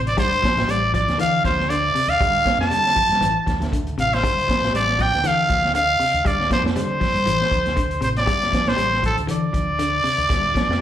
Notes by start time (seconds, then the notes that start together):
Already playing: A1 C3
0.07 D5, closed hi-hat
0.17 D2 G3 C5, kick, closed hi-hat
0.32 closed hi-hat
0.42 F3, kick, snare, closed hi-hat
0.56 A1, snare, closed hi-hat
0.67 A1 G3 D5, closed hi-hat
0.94 F3 D5, kick, closed hi-hat
1.07 D2, snare, closed hi-hat
1.18 D3 E3 F5, closed hi-hat
1.44 D2 F3 C5, kick, snare, closed hi-hat
1.60 snare
1.70 D3 D5, closed hi-hat
1.95 C3, open hi-hat
2.08 D2 F5, closed hi-hat
2.21 D2 G3, kick, closed hi-hat
2.45 D3, kick, snare, closed hi-hat
2.58 F2 A5, snare
2.70 D3 G3, closed hi-hat
2.87 snare
2.95 F3, kick, open hi-hat
3.09 G2, snare, closed hi-hat
3.21 A1 E3, closed hi-hat
3.46 D2 F3, kick, snare, closed hi-hat
3.60 D2, snare, closed hi-hat
3.72 D3, kick, closed hi-hat
3.87 closed hi-hat
3.98 A1 C3 F5, closed hi-hat
4.13 C5, snare, closed hi-hat
4.23 D2 G3, kick, closed hi-hat
4.39 closed hi-hat
4.48 F3, kick, snare, closed hi-hat
4.62 A1, snare, closed hi-hat
4.73 A1 G3 D5, snare, closed hi-hat
4.89 snare
4.99 F3 G5, kick, snare, closed hi-hat
5.12 D2, snare, closed hi-hat
5.24 D3 E3 F5, closed hi-hat
5.49 D2 F3, kick, snare, closed hi-hat
5.65 snare
5.74 D3 F5, closed hi-hat
6.00 C3, muted fingered electric bass stroke, open hi-hat
6.14 D2, closed hi-hat
6.25 D2 G3 D5, kick, closed hi-hat
6.40 snare
6.50 F3 C5, kick, snare, closed hi-hat
6.63 F2, snare
6.74 D3 G3 C5, snare, closed hi-hat
7.00 F3, kick, snare, open hi-hat
7.14 G2, closed hi-hat
7.26 A1 E3, closed hi-hat
7.42 snare
7.51 D2 F3, kick, closed hi-hat
7.65 D2, snare, closed hi-hat
7.76 D3, kick, closed hi-hat
7.91 closed hi-hat
8.01 A1 C3 C5, closed hi-hat
8.16 D5, snare, closed hi-hat
8.26 D2 G3, kick, closed hi-hat
8.42 snare, closed hi-hat
8.52 F3, kick, snare, closed hi-hat
8.66 A1 C5, snare, closed hi-hat
8.76 A1 G3, closed hi-hat
8.94 snare
9.03 F3 A4, kick, closed hi-hat
9.17 D2, closed hi-hat
9.27 D3 E3, closed hi-hat
9.31 D5
9.53 D2 F3, kick, closed hi-hat
9.79 D3, closed hi-hat
10.04 C3, muted fingered electric bass stroke, open hi-hat
10.18 D2, closed hi-hat
10.29 D2 G3, kick, snare, closed hi-hat
10.54 F3, kick, snare, closed hi-hat
10.69 F2, snare